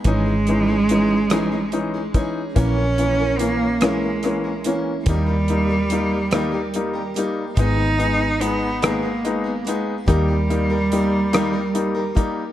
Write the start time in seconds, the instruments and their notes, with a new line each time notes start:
0.04 fingered electric bass G#1, steel-string acoustic guitar G#2 E3 G#3 C#4 D#4 G#4, grand piano E3 C#4 D#4, cello G#3, kick, closed hi-hat
0.26 steel-string acoustic guitar G#3 C#4 D#4 G#4
0.47 grand piano E3 C#4 D#4, closed hi-hat
0.68 steel-string acoustic guitar G#3 C#4 D#4 G#4
0.89 grand piano E3 C#4 D#4, steel-string acoustic guitar G#3 C#4 D#4 G#4, closed hi-hat
1.30 steel-string acoustic guitar G#2 E3 G#3 C#4 D#4 G#4, grand piano E3 C#4 D#4, cross-stick, closed hi-hat
1.52 steel-string acoustic guitar G#3 C#4 D#4 G#4
1.72 grand piano E3 C#4 D#4, closed hi-hat
1.94 steel-string acoustic guitar G#3 C#4 D#4 G#4
2.14 grand piano E3 C#4 D#4, steel-string acoustic guitar G#3 C#4 D#4 G#4, kick, closed hi-hat
2.55 fingered electric bass A#1, grand piano E3 A#3 C#4, steel-string acoustic guitar A#3 C#4 E4 A#4, cello C#4, kick, closed hi-hat
2.77 steel-string acoustic guitar C#4 E4 A#4
2.98 grand piano E3 A#3 C#4, closed hi-hat
3.19 steel-string acoustic guitar C#4 E4 A#4
3.39 grand piano E3 A#3 C#4, cello A#3, steel-string acoustic guitar A#3 C#4 E4, closed hi-hat
3.43 steel-string acoustic guitar A#4
3.81 grand piano E3 A#3 C#4, cello G#3, steel-string acoustic guitar A#3 C#4 E4 A#4, cross-stick, closed hi-hat
4.02 steel-string acoustic guitar C#4 E4 A#4
4.23 grand piano E3 A#3 C#4, cross-stick, closed hi-hat
4.44 steel-string acoustic guitar C#4 E4 A#4
4.64 grand piano E3 A#3 C#4, steel-string acoustic guitar A#3 C#4 E4 A#4, closed hi-hat
5.06 fingered electric bass D#2, steel-string acoustic guitar D#3 A#3 D#4 G4 A#4, cello G3, grand piano G3 A#3 D#4, kick, closed hi-hat
5.26 steel-string acoustic guitar D#4 G4 A#4
5.48 grand piano G3 A#3 D#4, closed hi-hat
5.69 steel-string acoustic guitar D#4 G4 A#4
5.89 grand piano G3 A#3 D#4, steel-string acoustic guitar A#3 D#4 G4 A#4, closed hi-hat
6.31 steel-string acoustic guitar D#3 A#3 D#4 G4 A#4, grand piano G3 A#3 D#4, cross-stick, closed hi-hat
6.52 steel-string acoustic guitar D#4 G4 A#4
6.74 grand piano G3 A#3 D#4, closed hi-hat
6.93 steel-string acoustic guitar D#4 G4 A#4
7.14 grand piano G3 A#3, steel-string acoustic guitar A#3 D#4 G4 A#4, closed hi-hat
7.18 grand piano D#4
7.56 fingered electric bass G#1, steel-string acoustic guitar G#2 D#3 G#3 B3 D#4 G#4, grand piano G#3 B3 D#4, cello D#4, kick, closed hi-hat
7.76 steel-string acoustic guitar G#3 B3 D#4 G#4
7.98 grand piano G#3 B3 D#4, closed hi-hat
8.19 steel-string acoustic guitar G#3 B3 D#4 G#4
8.39 steel-string acoustic guitar G#3 B3 D#4 G#4, grand piano G#3 B3 D#4, cello B3, closed hi-hat
8.82 steel-string acoustic guitar G#2 D#3 G#3 B3 D#4 G#4, grand piano G#3 B3 D#4, cello A#3, cross-stick, closed hi-hat
9.02 steel-string acoustic guitar G#3 D#4 G#4
9.24 grand piano G#3 B3 D#4, closed hi-hat
9.44 steel-string acoustic guitar G#3 B3 D#4 G#4
9.64 steel-string acoustic guitar G#3 B3 D#4 G#4, grand piano G#3 B3 D#4, closed hi-hat
10.06 fingered electric bass D#2, steel-string acoustic guitar D#3 A#3 D#4 G4 A#4, grand piano G3 A#3 D#4, cello G3, kick, closed hi-hat
10.28 steel-string acoustic guitar D#4 G4 A#4
10.50 grand piano G3 A#3 D#4, closed hi-hat
10.70 steel-string acoustic guitar D#4 G4 A#4
10.91 grand piano G3 A#3 D#4, steel-string acoustic guitar A#3 D#4 G4 A#4, closed hi-hat
11.33 steel-string acoustic guitar D#3 A#3 D#4 G4 A#4, grand piano G3 A#3 D#4, cross-stick, closed hi-hat
11.53 steel-string acoustic guitar D#4 G4 A#4
11.74 grand piano G3 A#3 D#4, closed hi-hat
11.95 steel-string acoustic guitar D#4 G4 A#4
12.15 grand piano G3 A#3 D#4, steel-string acoustic guitar A#3 D#4 G4 A#4, kick, closed hi-hat